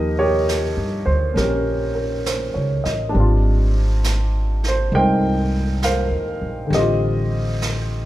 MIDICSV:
0, 0, Header, 1, 4, 480
1, 0, Start_track
1, 0, Tempo, 892857
1, 1692, Time_signature, 4, 2, 24, 8
1, 4330, End_track
2, 0, Start_track
2, 0, Title_t, "Upright piano"
2, 0, Program_c, 0, 0
2, 0, Control_c, 0, 64, 127
2, 0, Note_on_c, 0, 53, 50
2, 0, Note_on_c, 0, 58, 47
2, 0, Note_on_c, 0, 63, 46
2, 0, Note_on_c, 0, 67, 55
2, 0, Note_on_c, 0, 70, 55
2, 0, Note_on_c, 0, 75, 75
2, 80, Note_off_c, 0, 75, 0
2, 97, Note_off_c, 0, 67, 0
2, 101, Note_on_c, 0, 73, 74
2, 105, Note_off_c, 0, 70, 0
2, 105, Note_on_c, 0, 67, 60
2, 113, Note_on_c, 0, 70, 59
2, 556, Note_off_c, 0, 73, 0
2, 568, Note_on_c, 0, 72, 62
2, 721, Note_on_c, 0, 61, 36
2, 728, Note_off_c, 0, 67, 0
2, 729, Note_off_c, 0, 70, 0
2, 735, Note_off_c, 0, 72, 0
2, 736, Note_on_c, 0, 67, 37
2, 737, Note_on_c, 0, 70, 59
2, 743, Note_off_c, 0, 61, 0
2, 751, Note_on_c, 0, 61, 44
2, 1040, Note_off_c, 0, 70, 0
2, 1048, Note_on_c, 0, 70, 43
2, 1218, Note_on_c, 0, 72, 43
2, 1299, Note_off_c, 0, 70, 0
2, 1366, Note_on_c, 0, 73, 40
2, 1515, Note_off_c, 0, 72, 0
2, 1526, Note_on_c, 0, 75, 44
2, 1617, Note_off_c, 0, 73, 0
2, 1663, Note_on_c, 0, 62, 48
2, 1674, Note_off_c, 0, 53, 0
2, 1679, Note_off_c, 0, 61, 0
2, 1679, Note_on_c, 0, 55, 46
2, 1683, Note_off_c, 0, 58, 0
2, 1693, Note_off_c, 0, 67, 0
2, 1695, Note_off_c, 0, 63, 0
2, 1699, Control_c, 0, 64, 0
2, 1700, Note_on_c, 0, 60, 42
2, 1719, Note_on_c, 0, 65, 50
2, 1777, Note_off_c, 0, 75, 0
2, 1798, Control_c, 0, 64, 127
2, 2519, Note_on_c, 0, 72, 64
2, 2651, Note_on_c, 0, 56, 34
2, 2653, Note_off_c, 0, 72, 0
2, 2656, Note_on_c, 0, 58, 30
2, 2660, Note_on_c, 0, 70, 53
2, 2661, Note_on_c, 0, 79, 82
2, 2666, Note_on_c, 0, 63, 38
2, 2667, Note_on_c, 0, 72, 54
2, 3114, Note_off_c, 0, 79, 0
2, 3137, Note_off_c, 0, 70, 0
2, 3138, Note_off_c, 0, 72, 0
2, 3139, Note_on_c, 0, 77, 68
2, 3145, Note_on_c, 0, 70, 53
2, 3146, Note_on_c, 0, 72, 50
2, 3583, Note_on_c, 0, 50, 46
2, 3594, Note_off_c, 0, 55, 0
2, 3596, Note_off_c, 0, 62, 0
2, 3596, Note_off_c, 0, 70, 0
2, 3597, Note_off_c, 0, 72, 0
2, 3602, Note_on_c, 0, 55, 42
2, 3611, Note_off_c, 0, 56, 0
2, 3613, Note_off_c, 0, 58, 0
2, 3614, Note_off_c, 0, 60, 0
2, 3617, Control_c, 0, 64, 0
2, 3618, Note_off_c, 0, 63, 0
2, 3624, Note_off_c, 0, 65, 0
2, 3624, Note_on_c, 0, 60, 40
2, 3626, Note_on_c, 0, 75, 69
2, 3629, Note_off_c, 0, 77, 0
2, 3630, Note_on_c, 0, 67, 51
2, 3633, Note_on_c, 0, 72, 42
2, 3644, Note_on_c, 0, 65, 51
2, 3706, Control_c, 0, 64, 127
2, 4330, Note_off_c, 0, 50, 0
2, 4330, Note_off_c, 0, 55, 0
2, 4330, Note_off_c, 0, 60, 0
2, 4330, Note_off_c, 0, 65, 0
2, 4330, Note_off_c, 0, 67, 0
2, 4330, Note_off_c, 0, 72, 0
2, 4330, Note_off_c, 0, 75, 0
2, 4330, End_track
3, 0, Start_track
3, 0, Title_t, "Upright bass"
3, 0, Program_c, 1, 32
3, 0, Note_on_c, 1, 39, 78
3, 391, Note_off_c, 1, 39, 0
3, 413, Note_on_c, 1, 43, 50
3, 562, Note_off_c, 1, 43, 0
3, 571, Note_on_c, 1, 38, 60
3, 721, Note_off_c, 1, 38, 0
3, 729, Note_on_c, 1, 34, 73
3, 1349, Note_off_c, 1, 34, 0
3, 1373, Note_on_c, 1, 37, 52
3, 1521, Note_off_c, 1, 37, 0
3, 1536, Note_on_c, 1, 33, 54
3, 1682, Note_off_c, 1, 33, 0
3, 1692, Note_on_c, 1, 32, 69
3, 2629, Note_off_c, 1, 32, 0
3, 2645, Note_on_c, 1, 36, 72
3, 3266, Note_off_c, 1, 36, 0
3, 3283, Note_on_c, 1, 39, 48
3, 3435, Note_off_c, 1, 39, 0
3, 3448, Note_on_c, 1, 34, 47
3, 3598, Note_off_c, 1, 34, 0
3, 3604, Note_on_c, 1, 33, 73
3, 4330, Note_off_c, 1, 33, 0
3, 4330, End_track
4, 0, Start_track
4, 0, Title_t, "Drums"
4, 262, Note_on_c, 9, 38, 38
4, 262, Note_on_c, 9, 44, 49
4, 316, Note_off_c, 9, 38, 0
4, 316, Note_off_c, 9, 44, 0
4, 736, Note_on_c, 9, 25, 25
4, 736, Note_on_c, 9, 38, 23
4, 790, Note_off_c, 9, 38, 0
4, 1215, Note_on_c, 9, 38, 36
4, 1215, Note_on_c, 9, 44, 50
4, 1269, Note_off_c, 9, 38, 0
4, 1269, Note_off_c, 9, 44, 0
4, 1534, Note_on_c, 9, 38, 25
4, 1587, Note_off_c, 9, 38, 0
4, 1691, Note_off_c, 9, 25, 0
4, 1691, Note_on_c, 9, 25, 32
4, 2173, Note_on_c, 9, 38, 38
4, 2173, Note_on_c, 9, 44, 58
4, 2227, Note_off_c, 9, 38, 0
4, 2227, Note_off_c, 9, 44, 0
4, 2493, Note_on_c, 9, 38, 26
4, 2547, Note_off_c, 9, 38, 0
4, 2652, Note_off_c, 9, 25, 0
4, 2652, Note_on_c, 9, 25, 29
4, 3132, Note_on_c, 9, 38, 38
4, 3132, Note_on_c, 9, 44, 54
4, 3185, Note_off_c, 9, 38, 0
4, 3185, Note_off_c, 9, 44, 0
4, 3616, Note_off_c, 9, 25, 0
4, 3616, Note_on_c, 9, 25, 37
4, 3616, Note_on_c, 9, 38, 25
4, 3670, Note_off_c, 9, 38, 0
4, 4096, Note_on_c, 9, 38, 41
4, 4096, Note_on_c, 9, 44, 50
4, 4150, Note_off_c, 9, 38, 0
4, 4150, Note_off_c, 9, 44, 0
4, 4330, Note_off_c, 9, 25, 0
4, 4330, End_track
0, 0, End_of_file